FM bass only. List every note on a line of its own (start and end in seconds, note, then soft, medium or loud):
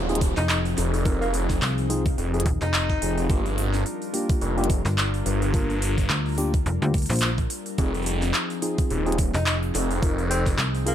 0.38 0.76 F1 medium
1.62 2.16 C2 loud
2.46 2.59 D#1 loud
2.62 3.00 F1 loud
4.85 5.24 G1 medium
6.10 6.64 D2 loud
6.66 6.79 F1 loud
6.82 7.07 D2 loud
7.10 7.48 A#1 loud
9.35 9.73 F1 loud
10.59 10.95 C2 loud